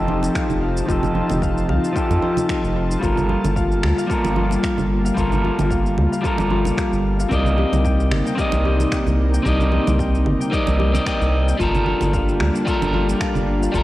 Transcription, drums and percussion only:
0.08 high conga medium
0.23 muted conga medium
0.23 cabasa medium
0.35 finger snap medium
0.35 kick loud
0.35 cabasa medium
0.50 low conga medium
0.50 cabasa soft
0.77 cabasa medium
0.89 kick medium
0.89 cabasa medium
1.03 low conga medium
1.03 cabasa soft
1.15 high conga medium
1.30 muted conga medium
1.30 low conga medium
1.30 cabasa medium
1.42 kick medium
1.42 cabasa medium
1.58 cabasa soft
1.69 low conga medium
1.84 cabasa medium
1.96 kick loud
1.96 cabasa medium
2.11 muted conga medium
2.11 cabasa soft
2.22 high conga medium
2.37 muted conga soft
2.37 low conga medium
2.37 cabasa medium
2.49 finger snap medium
2.49 kick loud
2.49 cabasa medium
2.64 cabasa soft
2.91 cabasa medium
3.03 kick medium
3.03 cabasa medium
3.17 low conga medium
3.17 cabasa soft
3.29 high conga medium
3.44 muted conga medium
3.44 low conga medium
3.44 cabasa medium
3.56 kick medium
3.56 cabasa soft
3.72 cabasa soft
3.83 finger snap medium
3.83 low conga medium
3.99 cabasa medium
4.10 kick loud
4.10 cabasa soft
4.25 muted conga medium
4.25 cabasa soft
4.36 high conga medium
4.51 muted conga soft
4.51 cabasa medium
4.63 finger snap medium
4.63 kick loud
4.63 cabasa soft
4.78 low conga medium
4.78 cabasa soft
5.06 cabasa medium
5.17 kick medium
5.17 cabasa medium
5.32 low conga medium
5.32 cabasa soft
5.45 high conga medium
5.59 muted conga medium
5.59 low conga medium
5.59 cabasa medium
5.71 kick medium
5.71 cabasa medium
5.86 cabasa soft
5.98 low conga medium
6.13 cabasa medium
6.24 kick medium
6.24 cabasa soft
6.38 muted conga medium
6.38 cabasa soft
6.50 high conga medium
6.65 muted conga medium
6.65 low conga medium
6.65 cabasa medium
6.78 finger snap medium
6.78 kick medium
6.78 cabasa soft
6.93 cabasa soft
7.20 cabasa medium
7.31 kick medium
7.31 cabasa soft
7.46 low conga medium
7.46 cabasa soft
7.58 high conga medium
7.73 muted conga medium
7.73 low conga medium
7.73 cabasa medium
7.85 kick medium
7.85 cabasa medium
8.00 cabasa soft
8.11 finger snap medium
8.11 low conga medium
8.27 cabasa medium
8.38 kick medium
8.38 cabasa soft
8.52 muted conga medium
8.52 cabasa soft
8.65 high conga medium
8.80 muted conga medium
8.80 cabasa medium
8.92 finger snap medium
8.92 kick medium
8.92 cabasa soft
9.07 low conga medium
9.07 cabasa soft
9.34 cabasa medium
9.45 kick medium
9.45 cabasa medium
9.60 low conga medium
9.60 cabasa soft
9.72 high conga medium
9.87 muted conga medium
9.87 low conga medium
9.87 cabasa medium
9.99 kick medium
9.99 cabasa soft
10.15 cabasa soft
10.26 low conga medium
10.41 cabasa medium
10.53 kick loud
10.53 cabasa soft
10.67 muted conga medium
10.67 cabasa soft
10.79 high conga medium
10.94 muted conga medium
10.94 low conga medium
10.94 cabasa medium
11.06 finger snap medium
11.06 kick loud
11.06 cabasa soft
11.21 cabasa soft
11.48 cabasa medium
11.60 kick medium
11.60 cabasa medium
11.75 low conga medium
11.75 cabasa soft
11.86 high conga medium
12.01 muted conga medium
12.01 low conga medium
12.01 cabasa medium
12.13 kick medium
12.13 cabasa soft
12.29 cabasa soft
12.40 finger snap medium
12.40 low conga medium
12.55 cabasa medium
12.67 kick loud
12.67 cabasa medium
12.82 muted conga medium
12.82 cabasa soft
12.94 high conga medium
13.09 muted conga medium
13.09 cabasa medium
13.21 finger snap medium
13.21 kick loud
13.21 cabasa soft
13.35 low conga medium
13.35 cabasa soft
13.63 cabasa medium
13.74 kick medium
13.74 cabasa medium

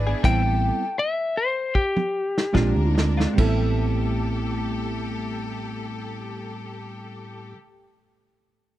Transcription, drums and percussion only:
0.24 kick loud
0.24 closed hi-hat medium
0.24 crash medium
1.75 kick medium
1.96 high tom medium
2.38 snare medium
2.55 kick medium
2.55 snare medium
2.55 mid tom medium
2.98 snare medium
3.20 snare medium
3.38 kick medium
3.38 crash medium

